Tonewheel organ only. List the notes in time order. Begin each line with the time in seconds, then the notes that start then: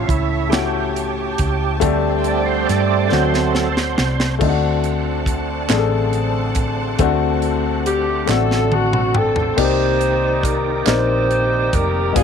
Already playing: F4
0.07 E4
0.50 G4
1.82 G3 A3 C4
2.27 D5
2.46 C5
2.67 D5
3.09 F#3 A3 C4 C5
3.52 A4
3.72 C5
4.41 D3 A3 C4 F4
4.49 F#5
8.50 F#3 D4
8.73 A3 F#4 F#5
8.93 C4 A4
9.16 D5
9.37 C5
9.58 D#3 A#3 C4 G4 D5
12.16 F3 B3 D4 G5